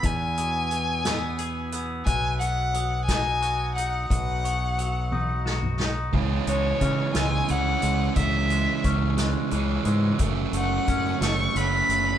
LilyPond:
<<
  \new Staff \with { instrumentName = "Glockenspiel" } { \time 6/8 \key cis \minor \tempo 4. = 59 e'''8 dis'''4 e'''4 e'''8 | fis'''4 dis'''4 dis'''8 dis'''8~ | dis'''8 cis'''4 dis'''4 dis'''8 | r8 cis'''4 e'''8 gis'''4 |
e'''4 cis'''8 fis'''4 e'''8 | r8 cis'''4 e'''8 fis'''4 | }
  \new Staff \with { instrumentName = "Violin" } { \time 6/8 \key cis \minor gis''2~ gis''8 r8 | gis''8 fis''4 gis''4 fis''8 | fis''2 r4 | r8 cis''4 gis''8 fis''4 |
e''4 r2 | r8 fis''4 cis'''8 b''4 | }
  \new Staff \with { instrumentName = "Clean electric guitar" } { \clef bass \time 6/8 \key cis \minor <e, e b gis'>8 b,8 e8 b8 gis'8 b8 | b,8 fis8 fis8 dis'8 fis'8 dis'8 | b,8 fis8 fis8 dis'8 fis'8 dis'8 | cis8 gis8 cis'8 gis8 e8 gis8 |
cis8 gis8 cis'8 gis8 e8 gis8 | fis,8 a8 cis'8 a8 fis8 a8 | }
  \new Staff \with { instrumentName = "Distorted electric guitar" } { \clef bass \time 6/8 \key cis \minor r2. | r2. | r2. | <cis e gis cis'>2 <cis e gis cis'>4 |
<cis e gis cis'>2 <cis e gis cis'>4 | <fis, cis fis a cis'>2 <fis, cis fis a cis'>4 | }
  \new Staff \with { instrumentName = "Fingered electric bass" } { \clef bass \time 6/8 \key cis \minor e,2. | b,,2. | b,,2. | cis,8 cis,8 cis8 cis,8 cis,8 cis,8 |
cis,4 cis,4 cis,8 gis,8 | fis,,8 fis,,8 fis,8 fis,,8 fis,,8 fis,,8 | }
  \new DrumStaff \with { instrumentName = "Drums" } \drummode { \time 6/8 <hh bd>8 hh8 hh8 <hh sn>8 hh8 hh8 | <hh bd>8 hh8 hh8 <hh bd sn>8 hh8 hh8 | <hh bd>8 hh8 hh8 tommh8 sn16 toml16 sn8 | <cymc bd>8 hh8 <hh bd>8 <hh sn>8 hh8 hh8 |
<hh bd>8 hh8 <hh bd>8 <hh sn>8 hh8 hh8 | <hh bd>8 hh8 <hh bd>8 <hh sn>8 hh8 hh8 | }
>>